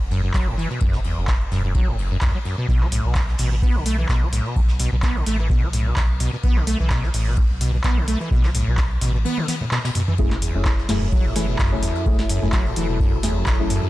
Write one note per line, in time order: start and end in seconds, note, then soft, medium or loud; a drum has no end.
0.00 0.30 F#1 medium
0.11 0.21 F#2 loud
0.11 ride medium
0.24 0.32 F#2 medium
0.34 0.66 F#1 medium
0.34 0.48 F#3 loud
0.34 kick loud
0.34 snare loud
0.34 clap loud
0.34 ride medium
0.47 0.56 A2 medium
0.58 0.68 E3 loud
0.58 ride medium
0.70 0.79 B2 medium
0.70 ride soft
0.80 1.12 F#1 loud
0.80 0.95 F#2 loud
0.80 kick loud
0.80 ride medium
0.93 1.00 C#3 loud
0.93 snare medium
1.04 1.19 E2 medium
1.04 ride medium
1.17 1.47 F#1 medium
1.17 1.29 F#2 medium
1.27 1.32 F#1 loud
1.27 kick loud
1.27 snare loud
1.27 clap loud
1.27 ride medium
1.41 ride soft
1.51 1.83 E1 medium
1.51 1.62 F#2 loud
1.51 snare soft
1.51 ride medium
1.64 1.73 F#2 medium
1.75 1.89 F#3 loud
1.75 kick loud
1.75 ride medium
1.88 2.18 F#1 medium
1.88 1.96 A2 medium
1.98 2.09 F#1 medium
1.98 ride medium
2.11 2.17 F#2 loud
2.21 2.31 C#2 medium
2.21 2.32 F#2 medium
2.21 kick loud
2.21 snare loud
2.21 clap loud
2.21 ride medium
2.35 2.38 F#3 medium
2.45 2.56 F#2 medium
2.45 ride medium
2.58 2.67 B2 loud
2.69 3.00 B1 loud
2.69 2.83 B2 loud
2.69 kick loud
2.69 ride medium
2.81 2.87 F#3 loud
2.81 clap soft
2.92 3.06 A2 medium
2.92 open hi-hat loud
2.92 ride medium
3.05 3.35 B1 medium
3.05 3.17 B2 medium
3.15 3.20 B1 loud
3.15 kick loud
3.15 snare loud
3.15 clap loud
3.15 ride medium
3.28 snare soft
3.38 3.70 A1 medium
3.38 3.49 B2 loud
3.38 open hi-hat medium
3.52 3.55 B2 medium
3.62 3.77 B3 loud
3.62 kick loud
3.62 ride medium
3.75 4.05 B1 medium
3.75 3.84 D3 medium
3.86 3.96 A3 loud
3.86 open hi-hat loud
3.86 ride medium
3.98 4.07 E3 medium
4.09 4.41 B1 medium
4.09 4.23 B2 medium
4.09 kick loud
4.09 snare loud
4.09 clap loud
4.09 ride medium
4.22 4.28 F#3 loud
4.33 4.47 A2 medium
4.33 open hi-hat medium
4.33 ride medium
4.45 4.58 B2 medium
4.45 ride soft
4.56 4.60 B1 loud
4.56 4.88 B1 loud
4.56 kick loud
4.56 ride medium
4.69 snare medium
4.79 4.90 B2 loud
4.79 open hi-hat loud
4.79 ride medium
4.92 5.22 B1 medium
4.92 4.96 B2 medium
5.03 5.17 B3 loud
5.03 kick loud
5.03 snare loud
5.03 clap loud
5.03 ride medium
5.16 5.25 D3 medium
5.16 ride soft
5.26 5.58 A1 medium
5.26 5.37 A3 loud
5.26 snare soft
5.26 open hi-hat medium
5.26 ride medium
5.39 5.48 E3 medium
5.50 5.64 B2 loud
5.50 kick loud
5.50 ride medium
5.62 5.93 B1 medium
5.62 5.68 F#3 loud
5.73 5.88 A2 medium
5.73 open hi-hat medium
5.73 ride medium
5.86 5.98 B2 medium
5.96 6.01 B1 loud
5.96 6.28 B1 medium
5.96 kick loud
5.96 snare loud
5.96 clap loud
5.96 ride medium
6.20 6.31 B2 medium
6.20 open hi-hat medium
6.20 ride medium
6.33 6.36 B2 medium
6.43 6.75 B1 medium
6.43 6.58 B3 loud
6.43 kick loud
6.43 ride medium
6.56 6.65 D3 medium
6.56 clap soft
6.67 6.78 A3 loud
6.67 open hi-hat medium
6.67 ride medium
6.80 7.10 B1 medium
6.80 6.89 E3 medium
6.90 7.05 B2 loud
6.90 kick loud
6.90 snare loud
6.90 clap loud
6.90 ride medium
7.03 7.09 F#3 loud
7.03 snare soft
7.14 7.45 A1 loud
7.14 7.28 A2 medium
7.14 open hi-hat medium
7.27 7.39 B2 medium
7.37 7.42 B1 loud
7.37 kick loud
7.37 ride medium
7.50 7.80 B1 medium
7.61 7.71 B2 medium
7.61 open hi-hat loud
7.61 ride medium
7.74 7.77 B2 medium
7.84 8.16 B1 medium
7.84 7.99 B3 medium
7.84 kick loud
7.84 snare loud
7.84 clap loud
7.84 ride medium
7.97 8.06 D3 medium
8.08 8.18 A3 loud
8.08 open hi-hat medium
8.08 ride medium
8.20 8.29 E3 medium
8.20 ride soft
8.31 8.63 B1 loud
8.31 8.45 B2 loud
8.31 kick loud
8.31 ride medium
8.43 8.50 F#3 loud
8.43 snare medium
8.43 clap soft
8.55 8.69 A2 medium
8.55 open hi-hat medium
8.55 ride medium
8.67 8.97 B1 medium
8.67 8.80 B2 medium
8.77 8.82 B1 loud
8.77 kick loud
8.77 snare loud
8.77 clap loud
8.77 ride medium
8.90 ride soft
9.01 9.25 A1 medium
9.01 9.12 B2 loud
9.01 snare soft
9.01 open hi-hat medium
9.01 ride medium
9.14 9.18 B2 medium
9.25 9.39 B3 loud
9.25 high tom medium
9.25 ride medium
9.38 9.46 D3 medium
9.38 high tom medium
9.48 9.55 B3 medium
9.48 snare loud
9.48 open hi-hat loud
9.48 high tom medium
9.48 ride medium
9.61 9.65 A2 medium
9.61 mid tom medium
9.71 9.79 B2 medium
9.71 snare loud
9.71 clap loud
9.71 mid tom medium
9.71 ride medium
9.84 9.90 B2 loud
9.84 snare loud
9.84 ride medium
9.95 10.02 B2 medium
9.95 mid tom medium
9.95 open hi-hat medium
9.95 ride medium
10.08 10.14 E3 medium
10.08 mid tom medium
10.18 10.50 F#1 loud
10.18 10.33 F#2 loud
10.18 13.90 F#3 medium
10.18 10.33 A3 medium
10.18 10.33 C#4 medium
10.18 10.33 E4 medium
10.18 13.90 E4 medium
10.18 10.33 G#4 loud
10.18 13.90 A4 medium
10.18 kick loud
10.18 ride medium
10.31 10.37 C#3 loud
10.31 snare soft
10.31 clap soft
10.42 10.56 E2 medium
10.42 open hi-hat loud
10.42 ride medium
10.55 10.85 F#1 medium
10.55 10.67 F#2 medium
10.55 10.67 A3 medium
10.55 10.67 C#4 medium
10.55 10.67 E4 medium
10.55 10.67 G#4 loud
10.65 10.70 F#1 loud
10.65 kick loud
10.65 snare loud
10.65 clap loud
10.65 ride medium
10.78 snare soft
10.89 11.20 E1 medium
10.89 10.99 F#2 loud
10.89 11.11 A3 medium
10.89 11.11 C#4 medium
10.89 11.11 E4 medium
10.89 11.11 G#4 medium
10.89 snare medium
10.89 open hi-hat medium
11.02 11.08 F#2 loud
11.12 11.27 F#3 loud
11.12 kick loud
11.12 ride medium
11.25 11.55 F#1 medium
11.25 11.34 A2 medium
11.35 11.46 E3 loud
11.35 11.57 A3 medium
11.35 11.57 C#4 medium
11.35 11.57 E4 medium
11.35 11.57 G#4 loud
11.35 snare soft
11.35 open hi-hat loud
11.35 ride medium
11.48 11.57 B2 medium
11.59 11.91 F#1 medium
11.59 11.73 F#2 loud
11.59 kick loud
11.59 snare loud
11.59 clap loud
11.59 ride medium
11.72 11.78 C#3 loud
11.72 11.85 A3 medium
11.72 11.85 C#4 medium
11.72 11.85 E4 medium
11.72 11.85 G#4 loud
11.82 11.97 E2 medium
11.82 open hi-hat medium
11.82 ride medium
11.95 12.08 F#2 medium
11.95 ride soft
12.06 12.37 F#1 loud
12.06 12.10 F#1 loud
12.06 12.20 A3 medium
12.06 12.20 C#4 medium
12.06 12.20 E4 medium
12.06 12.20 G#4 loud
12.06 kick loud
12.06 ride medium
12.19 snare medium
12.19 snare soft
12.29 12.40 F#2 loud
12.29 open hi-hat loud
12.29 ride medium
12.42 12.72 F#1 medium
12.42 12.48 F#2 loud
12.42 12.55 A3 medium
12.42 12.55 C#4 medium
12.42 12.55 E4 medium
12.42 12.55 G#4 loud
12.52 12.67 F#3 loud
12.52 kick loud
12.52 snare loud
12.52 clap loud
12.52 ride medium
12.66 12.75 A2 medium
12.66 ride soft
12.76 13.08 E1 medium
12.76 12.87 E3 loud
12.76 12.98 A3 medium
12.76 12.98 C#4 medium
12.76 12.98 E4 medium
12.76 12.98 G#4 medium
12.76 open hi-hat loud
12.76 ride medium
12.89 12.98 B2 medium
13.00 13.14 F#2 loud
13.00 kick loud
13.00 ride medium
13.13 13.43 F#1 medium
13.13 13.18 C#3 loud
13.23 13.38 E2 medium
13.23 13.45 A3 medium
13.23 13.45 C#4 medium
13.23 13.45 E4 medium
13.23 13.45 G#4 loud
13.23 snare soft
13.23 open hi-hat loud
13.23 ride medium
13.36 13.48 F#2 medium
13.46 13.78 F#1 medium
13.46 13.51 F#1 loud
13.46 kick loud
13.46 snare loud
13.46 clap loud
13.46 ride medium
13.59 13.72 A3 medium
13.59 13.72 C#4 medium
13.59 13.72 E4 medium
13.59 13.72 G#4 loud
13.70 13.81 F#2 medium
13.70 open hi-hat medium
13.70 ride medium
13.83 13.89 F#2 loud